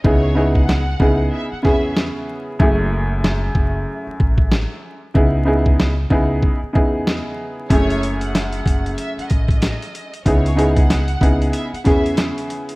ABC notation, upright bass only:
X:1
M:4/4
L:1/16
Q:"Swing 16ths" 1/4=94
K:F#dor
V:1 name="Upright bass" clef=bass
C,,6 C,,2 z2 E,,3 z3 | F,,,6 F,,,2 z2 A,,,3 z3 | C,,6 C,,2 z2 E,,3 z3 | F,,,6 F,,,2 z2 A,,,3 z3 |
C,,6 C,,2 z2 E,,3 z3 |]